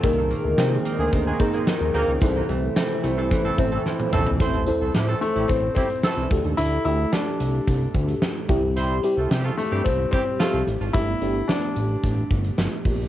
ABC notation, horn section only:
X:1
M:4/4
L:1/16
Q:1/4=110
K:Am
V:1 name="Horn section"
z6 z [_E,_A,_B,_A] z [E,A,B,A] z [E,A,B,A] z2 [B,_E_B]2 | z6 z [E,A,CA] z [E,A,CA] z [E,A,CA] z2 [E,A,CA]2 | [A,CEc]2 z [E,A,CA] [G,EG] [E,A,CA] z [G,EG] z2 [G,EG] z [E,A,CA]2 z2 | z16 |
[G,CEc]2 z [A,FA] [E,G,CG] [A,FA] z [E,G,CG] z2 [E,G,CG] z [A,FA]2 z2 | z16 |]